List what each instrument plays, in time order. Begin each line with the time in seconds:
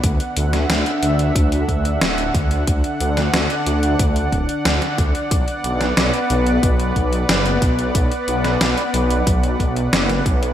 Already playing: analog synth pad F#5
0.04 detuned saw bass D2, analog synth pad D3 D4 E5, kick, closed hi-hat
0.20 closed hi-hat
0.37 detuned saw bass D2, closed hi-hat
0.53 snare, closed hi-hat
0.69 detuned saw bass D2, snare, closed hi-hat
0.86 closed hi-hat
1.02 detuned saw bass D2, closed hi-hat
1.19 closed hi-hat
1.35 detuned saw bass D2, kick, closed hi-hat
1.52 closed hi-hat
1.68 detuned saw bass D2, kick, closed hi-hat
1.85 closed hi-hat
2.01 detuned saw bass D1, snare, closed hi-hat
2.18 closed hi-hat
2.34 detuned saw bass D2, kick, closed hi-hat
2.51 closed hi-hat
2.67 detuned saw bass D2, analog synth pad D5, kick, closed hi-hat
2.84 closed hi-hat
3.00 detuned saw bass D2, closed hi-hat
3.17 snare, closed hi-hat
3.33 detuned saw bass D2, snare, closed hi-hat
3.50 closed hi-hat
3.66 detuned saw bass D2, closed hi-hat
3.83 closed hi-hat
3.99 detuned saw bass D2, kick, closed hi-hat
4.16 closed hi-hat
4.32 detuned saw bass D1, kick, closed hi-hat
4.49 closed hi-hat
4.65 detuned saw bass D2, snare, closed hi-hat
4.82 snare, closed hi-hat
4.98 detuned saw bass D2, kick, closed hi-hat
5.15 closed hi-hat
5.31 detuned saw bass B1, analog synth pad B3 B4, kick, closed hi-hat
5.48 closed hi-hat
5.64 detuned saw bass B1, closed hi-hat
5.81 snare, closed hi-hat
5.97 detuned saw bass B1, snare, closed hi-hat
6.14 closed hi-hat
6.30 detuned saw bass B1, closed hi-hat
6.47 closed hi-hat
6.63 detuned saw bass B1, kick, closed hi-hat
6.80 closed hi-hat
6.96 detuned saw bass B1, kick, closed hi-hat
7.13 closed hi-hat
7.29 detuned saw bass F#1, snare, closed hi-hat
7.46 closed hi-hat
7.62 detuned saw bass B1, kick, closed hi-hat
7.79 closed hi-hat
7.95 detuned saw bass B1, kick, closed hi-hat
8.12 closed hi-hat
8.28 detuned saw bass B1, closed hi-hat
8.44 snare, closed hi-hat
8.61 detuned saw bass B1, snare, closed hi-hat
8.78 closed hi-hat
8.94 detuned saw bass B1, closed hi-hat
9.10 closed hi-hat
9.27 detuned saw bass B1, kick, closed hi-hat
9.43 closed hi-hat
9.60 detuned saw bass B1, kick, closed hi-hat
9.76 closed hi-hat
9.93 detuned saw bass F#1, snare, closed hi-hat
10.10 snare, closed hi-hat
10.26 detuned saw bass B1, kick, closed hi-hat
10.43 closed hi-hat